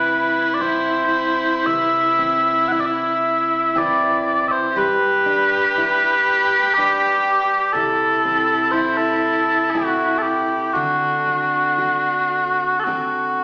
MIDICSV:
0, 0, Header, 1, 4, 480
1, 0, Start_track
1, 0, Tempo, 1047120
1, 760, Time_signature, 3, 2, 24, 8
1, 1721, Tempo, 1000000
1, 5081, Tempo, 1027397
1, 5561, Tempo, 1073345
1, 6302, End_track
2, 0, Start_track
2, 0, Title_t, "Bagpipes"
2, 0, Program_c, 0, 109
2, 0, Note_on_c, 0, 71, 72
2, 248, Note_off_c, 0, 71, 0
2, 248, Note_on_c, 0, 74, 52
2, 282, Note_off_c, 0, 74, 0
2, 282, Note_on_c, 0, 72, 69
2, 762, Note_off_c, 0, 72, 0
2, 762, Note_on_c, 0, 76, 85
2, 1229, Note_off_c, 0, 76, 0
2, 1229, Note_on_c, 0, 78, 76
2, 1248, Note_off_c, 0, 78, 0
2, 1248, Note_on_c, 0, 76, 76
2, 1282, Note_off_c, 0, 76, 0
2, 1282, Note_on_c, 0, 74, 66
2, 1312, Note_off_c, 0, 74, 0
2, 1312, Note_on_c, 0, 76, 73
2, 1730, Note_off_c, 0, 76, 0
2, 1730, Note_on_c, 0, 74, 79
2, 2068, Note_off_c, 0, 74, 0
2, 2068, Note_on_c, 0, 76, 72
2, 2085, Note_off_c, 0, 76, 0
2, 2085, Note_on_c, 0, 72, 72
2, 2210, Note_off_c, 0, 72, 0
2, 2210, Note_on_c, 0, 71, 82
2, 3153, Note_off_c, 0, 71, 0
2, 3153, Note_on_c, 0, 67, 74
2, 3628, Note_off_c, 0, 67, 0
2, 3628, Note_on_c, 0, 69, 76
2, 4101, Note_off_c, 0, 69, 0
2, 4101, Note_on_c, 0, 72, 78
2, 4223, Note_off_c, 0, 72, 0
2, 4223, Note_on_c, 0, 69, 68
2, 4578, Note_off_c, 0, 69, 0
2, 4578, Note_on_c, 0, 66, 70
2, 4807, Note_off_c, 0, 66, 0
2, 4807, Note_on_c, 0, 69, 66
2, 4825, Note_off_c, 0, 69, 0
2, 4825, Note_on_c, 0, 67, 66
2, 5073, Note_off_c, 0, 67, 0
2, 5073, Note_on_c, 0, 66, 71
2, 6015, Note_off_c, 0, 66, 0
2, 6015, Note_on_c, 0, 69, 61
2, 6035, Note_off_c, 0, 69, 0
2, 6035, Note_on_c, 0, 66, 61
2, 6302, Note_off_c, 0, 66, 0
2, 6302, End_track
3, 0, Start_track
3, 0, Title_t, "Cello"
3, 0, Program_c, 1, 42
3, 0, Note_on_c, 1, 64, 100
3, 2193, Note_off_c, 1, 64, 0
3, 2196, Note_on_c, 1, 67, 104
3, 3634, Note_on_c, 1, 64, 99
3, 3641, Note_off_c, 1, 67, 0
3, 5085, Note_on_c, 1, 62, 78
3, 5092, Note_off_c, 1, 64, 0
3, 6282, Note_off_c, 1, 62, 0
3, 6302, End_track
4, 0, Start_track
4, 0, Title_t, "Steel-string acoustic guitar"
4, 0, Program_c, 2, 25
4, 0, Note_on_c, 2, 48, 61
4, 0, Note_on_c, 2, 60, 48
4, 0, Note_on_c, 2, 64, 47
4, 272, Note_off_c, 2, 60, 0
4, 276, Note_off_c, 2, 64, 0
4, 277, Note_on_c, 2, 60, 43
4, 282, Note_on_c, 2, 64, 46
4, 756, Note_off_c, 2, 48, 0
4, 761, Note_on_c, 2, 48, 61
4, 763, Note_on_c, 2, 71, 48
4, 997, Note_off_c, 2, 60, 0
4, 1002, Note_on_c, 2, 60, 45
4, 1239, Note_off_c, 2, 64, 0
4, 1245, Note_on_c, 2, 64, 54
4, 1716, Note_off_c, 2, 60, 0
4, 1719, Note_off_c, 2, 64, 0
4, 1721, Note_on_c, 2, 60, 48
4, 1725, Note_on_c, 2, 64, 50
4, 1726, Note_off_c, 2, 71, 0
4, 1728, Note_on_c, 2, 71, 54
4, 2203, Note_on_c, 2, 55, 61
4, 2204, Note_off_c, 2, 71, 0
4, 2205, Note_off_c, 2, 48, 0
4, 2206, Note_on_c, 2, 71, 52
4, 2253, Note_off_c, 2, 60, 0
4, 2255, Note_off_c, 2, 64, 0
4, 2442, Note_on_c, 2, 62, 46
4, 2690, Note_on_c, 2, 64, 49
4, 2799, Note_off_c, 2, 64, 0
4, 3163, Note_off_c, 2, 62, 0
4, 3164, Note_off_c, 2, 71, 0
4, 3170, Note_on_c, 2, 62, 50
4, 3177, Note_on_c, 2, 71, 55
4, 3637, Note_on_c, 2, 48, 63
4, 3640, Note_off_c, 2, 71, 0
4, 3642, Note_on_c, 2, 69, 51
4, 3657, Note_off_c, 2, 55, 0
4, 3686, Note_off_c, 2, 62, 0
4, 3878, Note_on_c, 2, 60, 48
4, 4110, Note_on_c, 2, 64, 57
4, 4591, Note_off_c, 2, 64, 0
4, 4594, Note_off_c, 2, 60, 0
4, 4596, Note_on_c, 2, 60, 49
4, 4598, Note_on_c, 2, 64, 52
4, 4601, Note_off_c, 2, 69, 0
4, 4603, Note_on_c, 2, 69, 55
4, 5079, Note_off_c, 2, 48, 0
4, 5079, Note_on_c, 2, 50, 62
4, 5082, Note_off_c, 2, 69, 0
4, 5084, Note_on_c, 2, 69, 51
4, 5128, Note_off_c, 2, 64, 0
4, 5321, Note_off_c, 2, 60, 0
4, 5323, Note_on_c, 2, 60, 44
4, 5560, Note_on_c, 2, 66, 51
4, 6038, Note_off_c, 2, 66, 0
4, 6039, Note_off_c, 2, 69, 0
4, 6044, Note_off_c, 2, 60, 0
4, 6046, Note_on_c, 2, 60, 46
4, 6048, Note_on_c, 2, 66, 45
4, 6052, Note_on_c, 2, 69, 52
4, 6302, Note_off_c, 2, 50, 0
4, 6302, Note_off_c, 2, 60, 0
4, 6302, Note_off_c, 2, 66, 0
4, 6302, Note_off_c, 2, 69, 0
4, 6302, End_track
0, 0, End_of_file